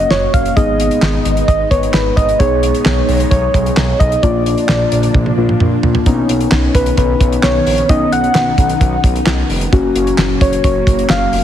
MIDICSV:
0, 0, Header, 1, 6, 480
1, 0, Start_track
1, 0, Tempo, 458015
1, 592, Time_signature, 4, 2, 24, 8
1, 11987, End_track
2, 0, Start_track
2, 0, Title_t, "Soft synth lead"
2, 0, Program_c, 0, 80
2, 0, Note_on_c, 0, 75, 99
2, 111, Note_on_c, 0, 73, 99
2, 127, Note_off_c, 0, 75, 0
2, 354, Note_on_c, 0, 77, 104
2, 370, Note_off_c, 0, 73, 0
2, 592, Note_on_c, 0, 75, 112
2, 608, Note_off_c, 0, 77, 0
2, 1543, Note_off_c, 0, 75, 0
2, 1549, Note_on_c, 0, 75, 98
2, 1774, Note_off_c, 0, 75, 0
2, 1790, Note_on_c, 0, 73, 93
2, 2014, Note_off_c, 0, 73, 0
2, 2029, Note_on_c, 0, 71, 90
2, 2254, Note_off_c, 0, 71, 0
2, 2268, Note_on_c, 0, 75, 96
2, 2508, Note_on_c, 0, 73, 102
2, 2524, Note_off_c, 0, 75, 0
2, 3460, Note_off_c, 0, 73, 0
2, 3466, Note_on_c, 0, 73, 97
2, 4188, Note_on_c, 0, 75, 95
2, 4204, Note_off_c, 0, 73, 0
2, 4432, Note_on_c, 0, 74, 101
2, 4448, Note_off_c, 0, 75, 0
2, 5872, Note_off_c, 0, 74, 0
2, 7075, Note_on_c, 0, 71, 82
2, 7297, Note_off_c, 0, 71, 0
2, 7314, Note_on_c, 0, 71, 88
2, 7793, Note_on_c, 0, 73, 97
2, 7809, Note_off_c, 0, 71, 0
2, 8274, Note_on_c, 0, 75, 108
2, 8289, Note_off_c, 0, 73, 0
2, 8508, Note_off_c, 0, 75, 0
2, 8514, Note_on_c, 0, 78, 111
2, 9432, Note_off_c, 0, 78, 0
2, 10915, Note_on_c, 0, 73, 82
2, 11137, Note_off_c, 0, 73, 0
2, 11153, Note_on_c, 0, 73, 88
2, 11599, Note_off_c, 0, 73, 0
2, 11634, Note_on_c, 0, 77, 98
2, 11987, Note_off_c, 0, 77, 0
2, 11987, End_track
3, 0, Start_track
3, 0, Title_t, "Synth keys"
3, 0, Program_c, 1, 88
3, 0, Note_on_c, 1, 58, 66
3, 0, Note_on_c, 1, 61, 60
3, 0, Note_on_c, 1, 66, 71
3, 553, Note_off_c, 1, 58, 0
3, 553, Note_off_c, 1, 66, 0
3, 554, Note_off_c, 1, 61, 0
3, 592, Note_on_c, 1, 63, 59
3, 592, Note_on_c, 1, 68, 70
3, 593, Note_on_c, 1, 59, 65
3, 1768, Note_off_c, 1, 63, 0
3, 1768, Note_off_c, 1, 68, 0
3, 1769, Note_off_c, 1, 59, 0
3, 1792, Note_on_c, 1, 59, 52
3, 1793, Note_on_c, 1, 63, 50
3, 1793, Note_on_c, 1, 71, 57
3, 2500, Note_off_c, 1, 59, 0
3, 2500, Note_off_c, 1, 63, 0
3, 2511, Note_on_c, 1, 68, 73
3, 2512, Note_on_c, 1, 59, 66
3, 2512, Note_on_c, 1, 63, 62
3, 2513, Note_off_c, 1, 71, 0
3, 4393, Note_off_c, 1, 68, 0
3, 4394, Note_off_c, 1, 59, 0
3, 4394, Note_off_c, 1, 63, 0
3, 4432, Note_on_c, 1, 58, 67
3, 4433, Note_on_c, 1, 62, 64
3, 4433, Note_on_c, 1, 65, 74
3, 5608, Note_off_c, 1, 58, 0
3, 5609, Note_off_c, 1, 62, 0
3, 5609, Note_off_c, 1, 65, 0
3, 5632, Note_on_c, 1, 58, 60
3, 5632, Note_on_c, 1, 65, 68
3, 5633, Note_on_c, 1, 62, 57
3, 6352, Note_off_c, 1, 58, 0
3, 6352, Note_on_c, 1, 59, 80
3, 6352, Note_on_c, 1, 63, 92
3, 6353, Note_off_c, 1, 62, 0
3, 6353, Note_off_c, 1, 65, 0
3, 6353, Note_on_c, 1, 61, 74
3, 8234, Note_off_c, 1, 59, 0
3, 8234, Note_off_c, 1, 61, 0
3, 8234, Note_off_c, 1, 63, 0
3, 8273, Note_on_c, 1, 59, 67
3, 8274, Note_on_c, 1, 61, 62
3, 8274, Note_on_c, 1, 63, 75
3, 10154, Note_off_c, 1, 59, 0
3, 10155, Note_off_c, 1, 61, 0
3, 10155, Note_off_c, 1, 63, 0
3, 10191, Note_on_c, 1, 61, 75
3, 10191, Note_on_c, 1, 66, 88
3, 10192, Note_on_c, 1, 58, 81
3, 11987, Note_off_c, 1, 58, 0
3, 11987, Note_off_c, 1, 61, 0
3, 11987, Note_off_c, 1, 66, 0
3, 11987, End_track
4, 0, Start_track
4, 0, Title_t, "String machine"
4, 0, Program_c, 2, 50
4, 0, Note_on_c, 2, 58, 72
4, 0, Note_on_c, 2, 61, 70
4, 0, Note_on_c, 2, 66, 88
4, 553, Note_off_c, 2, 58, 0
4, 553, Note_off_c, 2, 61, 0
4, 572, Note_off_c, 2, 66, 0
4, 590, Note_on_c, 2, 56, 79
4, 590, Note_on_c, 2, 63, 88
4, 592, Note_on_c, 2, 59, 71
4, 2492, Note_off_c, 2, 56, 0
4, 2492, Note_off_c, 2, 63, 0
4, 2512, Note_on_c, 2, 56, 80
4, 2512, Note_on_c, 2, 63, 85
4, 4394, Note_off_c, 2, 59, 0
4, 4413, Note_off_c, 2, 56, 0
4, 4413, Note_off_c, 2, 63, 0
4, 4431, Note_on_c, 2, 58, 70
4, 4431, Note_on_c, 2, 62, 85
4, 4433, Note_on_c, 2, 53, 81
4, 6333, Note_off_c, 2, 53, 0
4, 6333, Note_off_c, 2, 58, 0
4, 6333, Note_off_c, 2, 62, 0
4, 6354, Note_on_c, 2, 51, 78
4, 6354, Note_on_c, 2, 59, 73
4, 6354, Note_on_c, 2, 61, 91
4, 8254, Note_off_c, 2, 61, 0
4, 8271, Note_on_c, 2, 63, 85
4, 10155, Note_off_c, 2, 51, 0
4, 10155, Note_off_c, 2, 59, 0
4, 10173, Note_off_c, 2, 63, 0
4, 10191, Note_on_c, 2, 54, 79
4, 10191, Note_on_c, 2, 58, 71
4, 10192, Note_on_c, 2, 61, 84
4, 11987, Note_off_c, 2, 54, 0
4, 11987, Note_off_c, 2, 58, 0
4, 11987, Note_off_c, 2, 61, 0
4, 11987, End_track
5, 0, Start_track
5, 0, Title_t, "Analog synth bass"
5, 0, Program_c, 3, 38
5, 113, Note_on_c, 3, 30, 103
5, 281, Note_off_c, 3, 30, 0
5, 355, Note_on_c, 3, 30, 97
5, 522, Note_off_c, 3, 30, 0
5, 594, Note_on_c, 3, 32, 104
5, 930, Note_off_c, 3, 32, 0
5, 1072, Note_on_c, 3, 32, 105
5, 1240, Note_off_c, 3, 32, 0
5, 1313, Note_on_c, 3, 32, 95
5, 1481, Note_off_c, 3, 32, 0
5, 1552, Note_on_c, 3, 32, 108
5, 1720, Note_off_c, 3, 32, 0
5, 1792, Note_on_c, 3, 32, 95
5, 1960, Note_off_c, 3, 32, 0
5, 2032, Note_on_c, 3, 32, 101
5, 2200, Note_off_c, 3, 32, 0
5, 2274, Note_on_c, 3, 32, 103
5, 2442, Note_off_c, 3, 32, 0
5, 2514, Note_on_c, 3, 35, 106
5, 2849, Note_off_c, 3, 35, 0
5, 2993, Note_on_c, 3, 35, 103
5, 3161, Note_off_c, 3, 35, 0
5, 3232, Note_on_c, 3, 35, 102
5, 3400, Note_off_c, 3, 35, 0
5, 3472, Note_on_c, 3, 35, 104
5, 3640, Note_off_c, 3, 35, 0
5, 3712, Note_on_c, 3, 35, 102
5, 3880, Note_off_c, 3, 35, 0
5, 3953, Note_on_c, 3, 35, 110
5, 4121, Note_off_c, 3, 35, 0
5, 4196, Note_on_c, 3, 35, 96
5, 4363, Note_off_c, 3, 35, 0
5, 4434, Note_on_c, 3, 34, 103
5, 4769, Note_off_c, 3, 34, 0
5, 4913, Note_on_c, 3, 34, 103
5, 5081, Note_off_c, 3, 34, 0
5, 5152, Note_on_c, 3, 34, 102
5, 5320, Note_off_c, 3, 34, 0
5, 5392, Note_on_c, 3, 34, 107
5, 5560, Note_off_c, 3, 34, 0
5, 5631, Note_on_c, 3, 34, 100
5, 5800, Note_off_c, 3, 34, 0
5, 5874, Note_on_c, 3, 34, 106
5, 6042, Note_off_c, 3, 34, 0
5, 6114, Note_on_c, 3, 34, 104
5, 6281, Note_off_c, 3, 34, 0
5, 6354, Note_on_c, 3, 35, 110
5, 6521, Note_off_c, 3, 35, 0
5, 6592, Note_on_c, 3, 35, 104
5, 6760, Note_off_c, 3, 35, 0
5, 6832, Note_on_c, 3, 35, 105
5, 7000, Note_off_c, 3, 35, 0
5, 7071, Note_on_c, 3, 35, 103
5, 7239, Note_off_c, 3, 35, 0
5, 7312, Note_on_c, 3, 35, 117
5, 7480, Note_off_c, 3, 35, 0
5, 7551, Note_on_c, 3, 35, 103
5, 7720, Note_off_c, 3, 35, 0
5, 7794, Note_on_c, 3, 35, 98
5, 7961, Note_off_c, 3, 35, 0
5, 8032, Note_on_c, 3, 34, 86
5, 8200, Note_off_c, 3, 34, 0
5, 8273, Note_on_c, 3, 35, 110
5, 8441, Note_off_c, 3, 35, 0
5, 8511, Note_on_c, 3, 35, 99
5, 8680, Note_off_c, 3, 35, 0
5, 8751, Note_on_c, 3, 35, 107
5, 8920, Note_off_c, 3, 35, 0
5, 8990, Note_on_c, 3, 35, 103
5, 9159, Note_off_c, 3, 35, 0
5, 9232, Note_on_c, 3, 35, 111
5, 9400, Note_off_c, 3, 35, 0
5, 9471, Note_on_c, 3, 35, 102
5, 9640, Note_off_c, 3, 35, 0
5, 9711, Note_on_c, 3, 35, 99
5, 9880, Note_off_c, 3, 35, 0
5, 9950, Note_on_c, 3, 29, 95
5, 10119, Note_off_c, 3, 29, 0
5, 10193, Note_on_c, 3, 30, 112
5, 10361, Note_off_c, 3, 30, 0
5, 10429, Note_on_c, 3, 30, 105
5, 10599, Note_off_c, 3, 30, 0
5, 10670, Note_on_c, 3, 30, 111
5, 10839, Note_off_c, 3, 30, 0
5, 10910, Note_on_c, 3, 30, 94
5, 11079, Note_off_c, 3, 30, 0
5, 11151, Note_on_c, 3, 30, 108
5, 11320, Note_off_c, 3, 30, 0
5, 11391, Note_on_c, 3, 30, 103
5, 11559, Note_off_c, 3, 30, 0
5, 11631, Note_on_c, 3, 30, 93
5, 11800, Note_off_c, 3, 30, 0
5, 11873, Note_on_c, 3, 29, 91
5, 11987, Note_off_c, 3, 29, 0
5, 11987, End_track
6, 0, Start_track
6, 0, Title_t, "Drums"
6, 0, Note_on_c, 9, 42, 45
6, 102, Note_off_c, 9, 42, 0
6, 111, Note_on_c, 9, 38, 116
6, 215, Note_off_c, 9, 38, 0
6, 354, Note_on_c, 9, 42, 70
6, 355, Note_on_c, 9, 36, 93
6, 459, Note_off_c, 9, 42, 0
6, 460, Note_off_c, 9, 36, 0
6, 477, Note_on_c, 9, 42, 51
6, 581, Note_off_c, 9, 42, 0
6, 594, Note_on_c, 9, 36, 110
6, 596, Note_on_c, 9, 42, 68
6, 699, Note_off_c, 9, 36, 0
6, 701, Note_off_c, 9, 42, 0
6, 835, Note_on_c, 9, 42, 77
6, 940, Note_off_c, 9, 42, 0
6, 954, Note_on_c, 9, 42, 49
6, 1058, Note_off_c, 9, 42, 0
6, 1073, Note_on_c, 9, 38, 116
6, 1073, Note_on_c, 9, 39, 100
6, 1178, Note_off_c, 9, 38, 0
6, 1178, Note_off_c, 9, 39, 0
6, 1314, Note_on_c, 9, 42, 82
6, 1419, Note_off_c, 9, 42, 0
6, 1434, Note_on_c, 9, 42, 52
6, 1539, Note_off_c, 9, 42, 0
6, 1552, Note_on_c, 9, 36, 90
6, 1553, Note_on_c, 9, 42, 71
6, 1657, Note_off_c, 9, 36, 0
6, 1658, Note_off_c, 9, 42, 0
6, 1792, Note_on_c, 9, 36, 88
6, 1798, Note_on_c, 9, 42, 73
6, 1897, Note_off_c, 9, 36, 0
6, 1903, Note_off_c, 9, 42, 0
6, 1918, Note_on_c, 9, 42, 46
6, 2023, Note_off_c, 9, 42, 0
6, 2032, Note_on_c, 9, 38, 115
6, 2032, Note_on_c, 9, 39, 93
6, 2137, Note_off_c, 9, 38, 0
6, 2137, Note_off_c, 9, 39, 0
6, 2275, Note_on_c, 9, 36, 91
6, 2276, Note_on_c, 9, 42, 71
6, 2380, Note_off_c, 9, 36, 0
6, 2381, Note_off_c, 9, 42, 0
6, 2397, Note_on_c, 9, 42, 52
6, 2501, Note_off_c, 9, 42, 0
6, 2514, Note_on_c, 9, 36, 113
6, 2515, Note_on_c, 9, 42, 70
6, 2619, Note_off_c, 9, 36, 0
6, 2620, Note_off_c, 9, 42, 0
6, 2756, Note_on_c, 9, 42, 81
6, 2860, Note_off_c, 9, 42, 0
6, 2876, Note_on_c, 9, 42, 47
6, 2981, Note_off_c, 9, 42, 0
6, 2994, Note_on_c, 9, 38, 119
6, 2994, Note_on_c, 9, 39, 98
6, 3099, Note_off_c, 9, 38, 0
6, 3099, Note_off_c, 9, 39, 0
6, 3235, Note_on_c, 9, 46, 57
6, 3339, Note_off_c, 9, 46, 0
6, 3355, Note_on_c, 9, 42, 52
6, 3460, Note_off_c, 9, 42, 0
6, 3473, Note_on_c, 9, 36, 91
6, 3474, Note_on_c, 9, 42, 71
6, 3577, Note_off_c, 9, 36, 0
6, 3579, Note_off_c, 9, 42, 0
6, 3712, Note_on_c, 9, 36, 92
6, 3717, Note_on_c, 9, 42, 76
6, 3817, Note_off_c, 9, 36, 0
6, 3822, Note_off_c, 9, 42, 0
6, 3838, Note_on_c, 9, 42, 45
6, 3943, Note_off_c, 9, 42, 0
6, 3952, Note_on_c, 9, 38, 116
6, 3952, Note_on_c, 9, 39, 98
6, 4057, Note_off_c, 9, 38, 0
6, 4057, Note_off_c, 9, 39, 0
6, 4195, Note_on_c, 9, 36, 91
6, 4197, Note_on_c, 9, 42, 68
6, 4300, Note_off_c, 9, 36, 0
6, 4302, Note_off_c, 9, 42, 0
6, 4317, Note_on_c, 9, 42, 54
6, 4422, Note_off_c, 9, 42, 0
6, 4435, Note_on_c, 9, 36, 114
6, 4436, Note_on_c, 9, 42, 68
6, 4539, Note_off_c, 9, 36, 0
6, 4541, Note_off_c, 9, 42, 0
6, 4677, Note_on_c, 9, 42, 78
6, 4781, Note_off_c, 9, 42, 0
6, 4795, Note_on_c, 9, 42, 46
6, 4900, Note_off_c, 9, 42, 0
6, 4914, Note_on_c, 9, 38, 122
6, 4914, Note_on_c, 9, 39, 102
6, 5019, Note_off_c, 9, 38, 0
6, 5019, Note_off_c, 9, 39, 0
6, 5154, Note_on_c, 9, 42, 82
6, 5259, Note_off_c, 9, 42, 0
6, 5271, Note_on_c, 9, 42, 53
6, 5376, Note_off_c, 9, 42, 0
6, 5392, Note_on_c, 9, 36, 90
6, 5393, Note_on_c, 9, 48, 60
6, 5497, Note_off_c, 9, 36, 0
6, 5498, Note_off_c, 9, 48, 0
6, 5513, Note_on_c, 9, 48, 57
6, 5618, Note_off_c, 9, 48, 0
6, 5754, Note_on_c, 9, 47, 65
6, 5859, Note_off_c, 9, 47, 0
6, 5872, Note_on_c, 9, 45, 86
6, 5977, Note_off_c, 9, 45, 0
6, 6113, Note_on_c, 9, 43, 100
6, 6218, Note_off_c, 9, 43, 0
6, 6233, Note_on_c, 9, 43, 94
6, 6338, Note_off_c, 9, 43, 0
6, 6352, Note_on_c, 9, 42, 69
6, 6354, Note_on_c, 9, 36, 114
6, 6457, Note_off_c, 9, 42, 0
6, 6459, Note_off_c, 9, 36, 0
6, 6594, Note_on_c, 9, 42, 85
6, 6699, Note_off_c, 9, 42, 0
6, 6713, Note_on_c, 9, 42, 49
6, 6817, Note_off_c, 9, 42, 0
6, 6830, Note_on_c, 9, 38, 124
6, 6830, Note_on_c, 9, 39, 106
6, 6935, Note_off_c, 9, 38, 0
6, 6935, Note_off_c, 9, 39, 0
6, 7071, Note_on_c, 9, 36, 99
6, 7072, Note_on_c, 9, 42, 83
6, 7176, Note_off_c, 9, 36, 0
6, 7177, Note_off_c, 9, 42, 0
6, 7191, Note_on_c, 9, 42, 52
6, 7296, Note_off_c, 9, 42, 0
6, 7309, Note_on_c, 9, 42, 71
6, 7311, Note_on_c, 9, 36, 90
6, 7414, Note_off_c, 9, 42, 0
6, 7416, Note_off_c, 9, 36, 0
6, 7552, Note_on_c, 9, 36, 92
6, 7556, Note_on_c, 9, 42, 75
6, 7656, Note_off_c, 9, 36, 0
6, 7660, Note_off_c, 9, 42, 0
6, 7677, Note_on_c, 9, 42, 46
6, 7782, Note_off_c, 9, 42, 0
6, 7790, Note_on_c, 9, 38, 117
6, 7790, Note_on_c, 9, 39, 100
6, 7895, Note_off_c, 9, 38, 0
6, 7895, Note_off_c, 9, 39, 0
6, 8034, Note_on_c, 9, 46, 74
6, 8139, Note_off_c, 9, 46, 0
6, 8153, Note_on_c, 9, 42, 54
6, 8258, Note_off_c, 9, 42, 0
6, 8272, Note_on_c, 9, 42, 70
6, 8273, Note_on_c, 9, 36, 115
6, 8377, Note_off_c, 9, 42, 0
6, 8378, Note_off_c, 9, 36, 0
6, 8514, Note_on_c, 9, 42, 85
6, 8619, Note_off_c, 9, 42, 0
6, 8633, Note_on_c, 9, 42, 47
6, 8738, Note_off_c, 9, 42, 0
6, 8751, Note_on_c, 9, 38, 122
6, 8751, Note_on_c, 9, 39, 99
6, 8856, Note_off_c, 9, 38, 0
6, 8856, Note_off_c, 9, 39, 0
6, 8991, Note_on_c, 9, 36, 95
6, 8993, Note_on_c, 9, 42, 85
6, 9096, Note_off_c, 9, 36, 0
6, 9098, Note_off_c, 9, 42, 0
6, 9111, Note_on_c, 9, 42, 54
6, 9216, Note_off_c, 9, 42, 0
6, 9232, Note_on_c, 9, 36, 95
6, 9233, Note_on_c, 9, 42, 72
6, 9337, Note_off_c, 9, 36, 0
6, 9337, Note_off_c, 9, 42, 0
6, 9471, Note_on_c, 9, 36, 94
6, 9476, Note_on_c, 9, 42, 75
6, 9576, Note_off_c, 9, 36, 0
6, 9581, Note_off_c, 9, 42, 0
6, 9595, Note_on_c, 9, 42, 45
6, 9700, Note_off_c, 9, 42, 0
6, 9710, Note_on_c, 9, 38, 116
6, 9710, Note_on_c, 9, 39, 97
6, 9815, Note_off_c, 9, 38, 0
6, 9815, Note_off_c, 9, 39, 0
6, 9953, Note_on_c, 9, 46, 71
6, 10058, Note_off_c, 9, 46, 0
6, 10073, Note_on_c, 9, 42, 55
6, 10178, Note_off_c, 9, 42, 0
6, 10193, Note_on_c, 9, 36, 115
6, 10193, Note_on_c, 9, 42, 70
6, 10298, Note_off_c, 9, 36, 0
6, 10298, Note_off_c, 9, 42, 0
6, 10434, Note_on_c, 9, 42, 84
6, 10538, Note_off_c, 9, 42, 0
6, 10553, Note_on_c, 9, 42, 48
6, 10658, Note_off_c, 9, 42, 0
6, 10672, Note_on_c, 9, 38, 124
6, 10672, Note_on_c, 9, 39, 101
6, 10777, Note_off_c, 9, 38, 0
6, 10777, Note_off_c, 9, 39, 0
6, 10910, Note_on_c, 9, 36, 98
6, 10912, Note_on_c, 9, 42, 80
6, 11015, Note_off_c, 9, 36, 0
6, 11016, Note_off_c, 9, 42, 0
6, 11032, Note_on_c, 9, 42, 54
6, 11137, Note_off_c, 9, 42, 0
6, 11150, Note_on_c, 9, 42, 73
6, 11151, Note_on_c, 9, 36, 91
6, 11255, Note_off_c, 9, 42, 0
6, 11256, Note_off_c, 9, 36, 0
6, 11391, Note_on_c, 9, 36, 94
6, 11395, Note_on_c, 9, 42, 75
6, 11496, Note_off_c, 9, 36, 0
6, 11500, Note_off_c, 9, 42, 0
6, 11515, Note_on_c, 9, 42, 49
6, 11620, Note_off_c, 9, 42, 0
6, 11629, Note_on_c, 9, 38, 119
6, 11629, Note_on_c, 9, 39, 98
6, 11734, Note_off_c, 9, 38, 0
6, 11734, Note_off_c, 9, 39, 0
6, 11872, Note_on_c, 9, 46, 70
6, 11977, Note_off_c, 9, 46, 0
6, 11987, End_track
0, 0, End_of_file